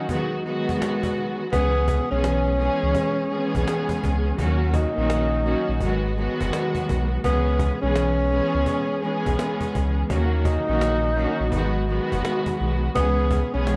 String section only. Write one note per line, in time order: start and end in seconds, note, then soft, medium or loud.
0.09 0.43 D#3 loud
0.09 0.43 F#3 medium
0.09 0.43 G#3 medium
0.09 0.44 B3 medium
0.09 0.44 F#4 loud
0.45 1.46 D#3 loud
0.45 1.46 F#3 medium
0.45 1.46 G#3 loud
0.45 1.46 B3 loud
0.45 1.47 F#4 loud
1.52 2.05 E3 medium
1.52 2.05 G#3 medium
1.52 2.05 B3 medium
1.52 2.06 C#4 medium
1.52 2.06 G#4 loud
2.10 2.56 E3 loud
2.10 2.56 G#3 medium
2.10 2.56 B3 medium
2.10 2.56 C#4 medium
2.10 2.57 G#4 loud
2.59 3.26 E3 loud
2.59 3.27 G#3 medium
2.59 3.27 B3 medium
2.59 3.27 C#4 medium
2.59 3.27 G#4 loud
3.30 4.31 E3 loud
3.30 4.32 G#3 loud
3.30 4.32 B3 loud
3.30 4.32 C#4 medium
3.30 4.32 G#4 loud
4.38 4.91 D#3 loud
4.38 4.91 F#3 medium
4.38 4.91 A#3 medium
4.38 4.92 C#4 medium
4.38 4.92 F#4 loud
4.96 5.42 D#3 medium
4.96 5.42 F#3 medium
4.96 5.42 A#3 medium
4.96 5.42 C#4 medium
4.96 5.42 F#4 loud
5.44 5.80 D#3 loud
5.44 5.80 F#3 medium
5.44 5.81 A#3 medium
5.44 5.81 C#4 medium
5.44 5.81 F#4 loud
5.81 6.15 D#3 loud
5.81 6.15 F#3 medium
5.81 6.15 G#3 medium
5.81 6.15 B3 medium
5.81 6.15 F#4 loud
6.17 7.18 D#3 loud
6.17 7.18 F#3 medium
6.17 7.18 G#3 loud
6.17 7.18 B3 medium
6.17 7.18 F#4 loud
7.24 7.77 E3 medium
7.24 7.77 G#3 medium
7.24 7.77 B3 medium
7.24 7.77 C#4 medium
7.24 7.77 G#4 loud
7.81 8.28 E3 loud
7.81 8.28 G#3 medium
7.81 8.28 B3 medium
7.81 8.28 C#4 medium
7.81 8.28 G#4 loud
8.31 8.98 E3 loud
8.31 8.98 G#3 medium
8.31 8.98 B3 medium
8.31 8.99 C#4 medium
8.31 8.99 G#4 loud
9.01 10.03 E3 loud
9.01 10.03 G#3 loud
9.01 10.03 B3 medium
9.01 10.03 C#4 medium
9.01 10.03 G#4 loud
10.10 10.62 D#3 loud
10.10 10.63 F#3 medium
10.10 10.63 A#3 medium
10.10 10.63 C#4 medium
10.10 10.63 F#4 medium
10.67 11.13 D#3 medium
10.67 11.13 F#3 medium
10.67 11.13 A#3 medium
10.67 11.14 C#4 medium
10.67 11.14 F#4 loud
11.15 11.51 D#3 loud
11.15 11.51 F#3 medium
11.15 11.52 A#3 medium
11.15 11.52 C#4 medium
11.15 11.52 F#4 loud
11.52 11.86 D#3 loud
11.52 11.86 F#3 medium
11.52 11.86 G#3 medium
11.52 11.86 B3 medium
11.52 11.87 F#4 loud
11.88 12.89 D#3 loud
11.88 12.89 F#3 medium
11.88 12.89 G#3 loud
11.88 12.89 B3 loud
11.88 12.90 F#4 loud
12.95 13.48 E3 medium
12.95 13.48 G#3 medium
12.95 13.48 B3 medium
12.95 13.48 C#4 medium
12.95 13.49 G#4 loud
13.52 13.76 E3 loud
13.52 13.76 G#3 medium
13.52 13.76 B3 medium
13.52 13.76 C#4 medium
13.52 13.76 G#4 loud